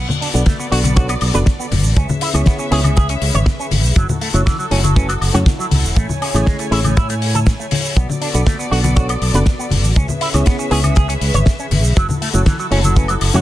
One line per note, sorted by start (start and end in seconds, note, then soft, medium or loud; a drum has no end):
0.00 1.95 B3 medium
0.00 1.95 F#4 medium
0.00 1.95 A4 medium
0.00 1.95 D5 medium
0.09 high conga medium
0.09 low conga medium
0.09 shaker soft
0.21 0.28 D4 medium
0.21 open hi-hat medium
0.34 0.42 B1 medium
0.34 0.42 B3 medium
0.34 0.40 B3 medium
0.34 0.42 D4 medium
0.34 0.42 F#4 medium
0.34 0.42 A4 medium
0.34 0.42 D5 medium
0.34 closed hi-hat soft
0.34 shaker medium
0.46 0.56 A3 medium
0.46 kick loud
0.46 snare loud
0.46 closed hi-hat medium
0.46 high conga medium
0.46 shaker medium
0.59 0.66 B3 medium
0.59 shaker soft
0.71 1.15 B1 loud
0.71 0.79 B3 medium
0.71 0.80 D4 medium
0.71 0.80 F#4 medium
0.71 0.78 F#4 loud
0.71 0.80 A4 medium
0.71 0.80 D5 medium
0.71 open hi-hat loud
0.84 0.93 B3 medium
0.84 closed hi-hat medium
0.84 high conga medium
0.84 shaker medium
0.96 1.09 B3 medium
0.96 1.09 D4 medium
0.96 1.06 F#4 medium
0.96 1.10 F#4 medium
0.96 1.10 A4 medium
0.96 1.10 C#5 medium
0.96 kick loud
0.96 closed hi-hat medium
0.96 shaker medium
1.09 1.13 B3 medium
1.09 closed hi-hat medium
1.09 high woodblock medium
1.09 shaker medium
1.21 1.30 B1 medium
1.21 open hi-hat loud
1.21 high woodblock medium
1.34 1.42 F#1 medium
1.34 1.42 B3 medium
1.34 1.42 D4 medium
1.34 1.42 F#4 medium
1.34 1.42 A4 medium
1.34 1.38 B4 medium
1.34 1.42 D5 loud
1.34 snare soft
1.34 closed hi-hat soft
1.34 high conga medium
1.34 shaker medium
1.46 kick loud
1.46 snare loud
1.46 closed hi-hat medium
1.46 shaker medium
1.59 1.66 B3 medium
1.59 shaker medium
1.71 1.84 F#1 medium
1.71 open hi-hat loud
1.71 high conga medium
1.71 low conga medium
1.84 1.92 A1 medium
1.84 shaker medium
1.96 2.05 C#2 medium
1.96 2.06 C#4 medium
1.96 3.95 C#4 medium
1.96 3.95 G#4 medium
1.96 3.95 B4 medium
1.96 3.95 E5 medium
1.96 kick loud
1.96 closed hi-hat medium
1.96 shaker medium
2.09 high conga loud
2.09 low conga loud
2.09 shaker soft
2.21 2.28 E4 medium
2.21 open hi-hat loud
2.33 2.42 C#2 medium
2.33 2.68 B3 medium
2.33 2.69 C#4 medium
2.33 2.41 C#4 medium
2.33 2.69 E4 medium
2.33 2.69 G#4 medium
2.33 2.69 C#5 medium
2.33 snare soft
2.33 closed hi-hat medium
2.33 high woodblock medium
2.33 shaker medium
2.46 2.56 B3 medium
2.46 kick loud
2.46 snare loud
2.46 closed hi-hat medium
2.46 high conga medium
2.46 shaker medium
2.59 2.65 C#4 medium
2.59 shaker soft
2.71 3.15 C#2 loud
2.71 2.80 B3 loud
2.71 2.80 C#4 medium
2.71 2.80 E4 medium
2.71 2.78 G#4 loud
2.71 2.80 G#4 medium
2.71 2.80 C#5 loud
2.71 open hi-hat loud
2.84 2.94 C#4 medium
2.84 closed hi-hat medium
2.84 high conga medium
2.84 high woodblock medium
2.84 shaker medium
2.97 3.06 G#4 medium
2.97 kick loud
2.97 closed hi-hat medium
2.97 shaker medium
3.09 3.13 C#4 medium
3.09 closed hi-hat medium
3.09 shaker medium
3.21 3.30 C#2 medium
3.21 open hi-hat loud
3.34 3.42 G#1 medium
3.34 3.38 C#5 medium
3.34 closed hi-hat soft
3.34 high conga medium
3.34 shaker medium
3.46 kick loud
3.46 snare loud
3.46 closed hi-hat medium
3.46 shaker medium
3.59 3.66 C#4 medium
3.59 shaker soft
3.71 3.84 G#1 medium
3.71 open hi-hat loud
3.71 high conga medium
3.71 low conga medium
3.84 3.92 B1 medium
3.84 shaker medium
3.96 4.05 F#1 medium
3.96 4.06 F#3 medium
3.96 7.93 E4 medium
3.96 5.95 F#4 medium
3.96 5.95 A4 medium
3.96 kick loud
3.96 closed hi-hat medium
3.96 shaker medium
4.09 high conga medium
4.09 low conga loud
4.09 shaker soft
4.21 4.28 A3 medium
4.21 open hi-hat loud
4.34 4.42 F#1 medium
4.34 4.40 F#3 medium
4.34 4.42 A3 medium
4.34 4.42 C#4 medium
4.34 4.42 E4 medium
4.34 4.42 F#4 medium
4.34 4.42 C#5 medium
4.34 closed hi-hat soft
4.34 shaker medium
4.46 4.56 E3 medium
4.46 kick loud
4.46 snare loud
4.46 closed hi-hat medium
4.46 high conga medium
4.46 shaker medium
4.59 4.65 F#3 medium
4.59 shaker soft
4.71 5.15 F#1 loud
4.71 4.79 A3 medium
4.71 4.80 C#4 medium
4.71 4.78 C#4 loud
4.71 4.80 E4 medium
4.71 4.80 F#4 medium
4.71 4.80 C#5 medium
4.71 open hi-hat loud
4.84 4.93 F#3 medium
4.84 closed hi-hat medium
4.84 high conga loud
4.84 shaker medium
4.96 5.09 A3 medium
4.96 5.06 C#4 medium
4.96 5.10 C#4 medium
4.96 5.10 E4 medium
4.96 5.10 F#4 medium
4.96 5.10 B4 medium
4.96 kick loud
4.96 closed hi-hat medium
4.96 shaker medium
5.09 5.13 F#3 medium
5.09 closed hi-hat medium
5.09 high woodblock medium
5.09 shaker soft
5.21 5.30 F#1 medium
5.21 open hi-hat loud
5.21 high woodblock medium
5.34 5.42 F#2 medium
5.34 5.42 A3 medium
5.34 5.42 C#4 medium
5.34 5.42 E4 medium
5.34 5.38 F#4 loud
5.34 5.42 F#4 medium
5.34 5.42 C#5 loud
5.34 snare soft
5.34 closed hi-hat medium
5.34 high conga medium
5.34 shaker medium
5.46 kick loud
5.46 snare loud
5.46 closed hi-hat medium
5.46 shaker medium
5.59 5.65 F#3 medium
5.59 shaker soft
5.71 5.85 C#2 medium
5.71 open hi-hat loud
5.71 high conga medium
5.71 low conga medium
5.85 5.92 E1 medium
5.85 shaker medium
5.96 6.05 A1 medium
5.96 6.06 A3 medium
5.96 7.95 C#5 medium
5.96 7.95 G#5 medium
5.96 kick loud
5.96 closed hi-hat medium
5.96 shaker medium
6.09 high conga medium
6.09 low conga medium
6.09 shaker soft
6.21 6.28 C#4 medium
6.21 open hi-hat loud
6.21 high woodblock medium
6.34 6.42 A1 medium
6.34 6.69 A3 medium
6.34 6.40 A3 medium
6.34 6.69 C#4 medium
6.34 6.69 E4 medium
6.34 6.69 G#4 medium
6.34 6.69 C#5 medium
6.34 snare soft
6.34 closed hi-hat medium
6.34 high woodblock medium
6.34 shaker medium
6.47 6.56 G#3 medium
6.47 kick loud
6.47 snare loud
6.47 closed hi-hat medium
6.47 high conga medium
6.47 shaker medium
6.59 6.66 A3 medium
6.59 closed hi-hat soft
6.59 shaker medium
6.71 6.97 A1 loud
6.71 6.80 A3 medium
6.71 6.80 C#4 medium
6.71 6.78 E4 loud
6.71 6.80 E4 medium
6.71 6.80 G#4 medium
6.71 6.80 C#5 loud
6.71 open hi-hat loud
6.85 6.94 A3 medium
6.85 closed hi-hat medium
6.85 high conga medium
6.85 high woodblock medium
6.85 shaker medium
6.97 7.52 A2 medium
6.97 7.06 E4 medium
6.97 kick loud
6.97 closed hi-hat medium
6.97 shaker medium
7.10 7.13 A3 loud
7.10 closed hi-hat medium
7.10 shaker soft
7.22 open hi-hat loud
7.34 7.38 A4 loud
7.34 closed hi-hat medium
7.34 high conga medium
7.34 shaker medium
7.46 kick loud
7.46 snare loud
7.46 closed hi-hat medium
7.46 shaker medium
7.59 7.66 A3 medium
7.59 shaker soft
7.71 open hi-hat loud
7.71 high conga medium
7.71 low conga medium
7.85 shaker medium
7.96 8.05 B1 medium
7.96 8.06 B3 medium
7.96 9.95 B3 medium
7.96 9.95 F#4 medium
7.96 9.95 A4 medium
7.96 9.95 D5 medium
7.96 kick loud
7.96 closed hi-hat medium
7.96 maracas medium
7.96 shaker medium
8.09 high conga loud
8.09 low conga medium
8.09 maracas soft
8.09 shaker soft
8.21 8.28 D4 medium
8.21 open hi-hat loud
8.34 8.42 B1 medium
8.34 8.42 B3 medium
8.34 8.41 B3 medium
8.34 8.42 D4 medium
8.34 8.42 F#4 medium
8.34 8.42 A4 medium
8.34 8.42 D5 medium
8.34 closed hi-hat medium
8.34 maracas medium
8.34 shaker medium
8.46 8.56 A3 medium
8.46 kick loud
8.46 snare loud
8.46 closed hi-hat medium
8.46 high conga medium
8.46 maracas medium
8.46 shaker medium
8.59 8.65 B3 medium
8.59 maracas soft
8.59 shaker medium
8.71 9.15 B1 loud
8.71 8.80 B3 medium
8.71 8.80 D4 medium
8.71 8.78 F#4 loud
8.71 8.80 F#4 medium
8.71 8.80 A4 medium
8.71 8.80 D5 medium
8.71 open hi-hat loud
8.84 8.93 B3 medium
8.84 closed hi-hat medium
8.84 high conga medium
8.84 maracas medium
8.84 shaker medium
8.96 9.10 B3 medium
8.96 9.10 D4 medium
8.96 9.06 F#4 medium
8.96 9.10 F#4 medium
8.96 9.10 A4 medium
8.96 9.10 C#5 medium
8.96 kick loud
8.96 closed hi-hat medium
8.96 shaker medium
8.96 maracas medium
9.09 9.13 B3 loud
9.09 closed hi-hat medium
9.09 high woodblock medium
9.09 maracas soft
9.09 shaker medium
9.21 9.30 B1 medium
9.21 open hi-hat loud
9.21 high woodblock medium
9.34 9.42 F#1 medium
9.34 9.42 B3 medium
9.34 9.42 D4 medium
9.34 9.42 F#4 medium
9.34 9.42 A4 medium
9.34 9.38 B4 loud
9.34 9.43 D5 loud
9.34 snare soft
9.34 closed hi-hat soft
9.34 high conga medium
9.34 maracas medium
9.34 shaker medium
9.46 kick loud
9.46 snare loud
9.46 closed hi-hat medium
9.46 maracas medium
9.46 shaker medium
9.59 9.65 B3 medium
9.59 maracas soft
9.59 shaker medium
9.71 9.84 F#1 medium
9.71 open hi-hat loud
9.71 high conga medium
9.71 low conga medium
9.84 9.92 A1 medium
9.84 maracas medium
9.84 shaker medium
9.96 10.05 C#2 loud
9.96 10.06 C#4 medium
9.96 11.95 C#4 medium
9.96 11.95 G#4 medium
9.96 11.95 B4 medium
9.96 11.94 E5 medium
9.96 kick loud
9.96 closed hi-hat medium
9.96 maracas medium
9.96 shaker medium
10.08 high conga medium
10.08 low conga medium
10.08 maracas soft
10.08 shaker medium
10.21 10.28 E4 medium
10.21 open hi-hat loud
10.34 10.42 C#2 medium
10.34 10.68 B3 medium
10.34 10.40 C#4 medium
10.34 10.69 C#4 medium
10.34 10.69 E4 medium
10.34 10.69 G#4 medium
10.34 10.69 C#5 medium
10.34 snare soft
10.34 closed hi-hat medium
10.34 high woodblock medium
10.34 maracas medium
10.34 shaker medium
10.46 10.56 B3 medium
10.46 kick loud
10.46 snare loud
10.46 closed hi-hat medium
10.46 high conga medium
10.46 maracas medium
10.46 shaker medium
10.58 10.65 C#4 medium
10.58 maracas soft
10.58 shaker medium
10.71 11.14 C#2 loud
10.71 10.79 B3 loud
10.71 10.80 C#4 medium
10.71 10.80 E4 medium
10.71 10.78 G#4 loud
10.71 10.80 G#4 medium
10.71 10.80 C#5 loud
10.71 open hi-hat loud
10.84 10.93 C#4 medium
10.84 closed hi-hat medium
10.84 high conga medium
10.84 high woodblock medium
10.84 maracas medium
10.84 shaker medium
10.95 11.06 G#4 medium
10.95 kick loud
10.95 closed hi-hat medium
10.95 maracas medium
10.95 shaker medium
11.09 11.13 C#4 loud
11.09 closed hi-hat medium
11.09 shaker medium
11.09 maracas soft
11.21 11.30 C#2 medium
11.21 open hi-hat medium
11.34 11.42 G#1 medium
11.34 11.38 C#5 loud
11.34 closed hi-hat soft
11.34 high conga medium
11.34 maracas medium
11.34 shaker medium
11.46 kick loud
11.46 snare loud
11.46 closed hi-hat medium
11.46 maracas medium
11.46 shaker medium
11.59 11.65 C#4 medium
11.59 shaker soft
11.59 maracas soft
11.71 11.84 G#1 medium
11.71 open hi-hat loud
11.71 high conga medium
11.71 low conga medium
11.84 11.92 B1 medium
11.84 maracas medium
11.84 shaker medium
11.96 12.05 F#1 medium
11.96 12.06 F#3 medium
11.96 13.41 E4 medium
11.96 13.41 F#4 medium
11.96 13.41 A4 medium
11.96 kick loud
11.96 closed hi-hat medium
11.96 maracas medium
11.96 shaker medium
12.09 high conga medium
12.09 low conga medium
12.09 maracas soft
12.09 shaker soft
12.22 12.28 A3 medium
12.22 open hi-hat loud
12.33 12.42 F#1 medium
12.33 12.41 F#3 medium
12.33 12.42 A3 medium
12.33 12.42 C#4 medium
12.33 12.42 E4 medium
12.33 12.42 F#4 medium
12.33 12.42 C#5 medium
12.33 closed hi-hat medium
12.33 maracas medium
12.33 shaker medium
12.46 12.56 E3 medium
12.46 kick loud
12.46 snare loud
12.46 closed hi-hat medium
12.46 high conga medium
12.46 maracas medium
12.46 shaker medium
12.59 12.66 F#3 medium
12.59 maracas soft
12.59 shaker soft
12.71 13.15 F#1 loud
12.71 12.79 A3 medium
12.71 12.79 C#4 medium
12.71 12.78 C#4 loud
12.71 12.80 E4 medium
12.71 12.80 F#4 medium
12.71 12.80 C#5 medium
12.71 open hi-hat loud
12.84 12.94 F#3 medium
12.84 closed hi-hat medium
12.84 high conga medium
12.84 shaker medium
12.84 maracas medium
12.96 13.09 A3 medium
12.96 13.10 C#4 medium
12.96 13.06 C#4 medium
12.96 13.10 E4 medium
12.96 13.10 F#4 medium
12.96 13.10 B4 medium
12.96 kick loud
12.96 closed hi-hat medium
12.96 maracas medium
12.96 shaker medium
13.08 13.13 F#3 loud
13.08 closed hi-hat medium
13.08 high woodblock medium
13.08 maracas soft
13.08 shaker medium
13.21 13.30 F#1 medium
13.21 open hi-hat loud
13.21 high woodblock medium
13.33 13.41 F#2 medium
13.33 13.41 A3 loud
13.33 13.41 C#4 medium
13.33 13.41 E4 medium
13.33 13.41 F#4 medium
13.33 13.38 F#4 loud
13.33 13.41 C#5 loud
13.33 snare soft
13.33 closed hi-hat soft
13.33 high conga medium
13.33 maracas medium
13.33 shaker medium